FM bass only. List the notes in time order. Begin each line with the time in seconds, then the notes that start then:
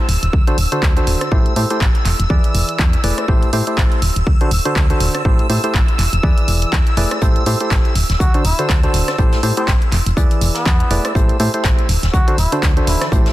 0.09 D1
0.23 D1
0.33 D2
0.58 D1
0.82 D2
1.07 D1
1.32 A1
1.56 A2
1.81 A1
2.05 E1
2.20 E1
2.30 E2
2.55 E1
2.79 E2
3.04 E1
3.28 A1
3.53 A2
3.78 A1
4.02 D1
4.16 D1
4.27 D2
4.51 D1
4.76 D2
5.00 D1
5.25 A1
5.50 A2
5.74 A1
5.99 E1
6.13 E1
6.23 E2
6.48 E1
6.73 E2
6.97 E1
7.22 A1
7.46 A2
7.71 A1
7.96 D1
8.10 D1
8.20 D2
8.45 D1
8.69 D2
8.94 D1
9.19 A1
9.43 A2
9.68 A1
9.92 E1
10.06 E1
10.17 E2
10.41 E1
10.66 E2
10.91 E1
11.15 A1
11.40 A2
11.64 A1
11.89 D1
12.03 D1
12.14 D2
12.38 D1
12.63 D2
12.87 D1
13.12 A1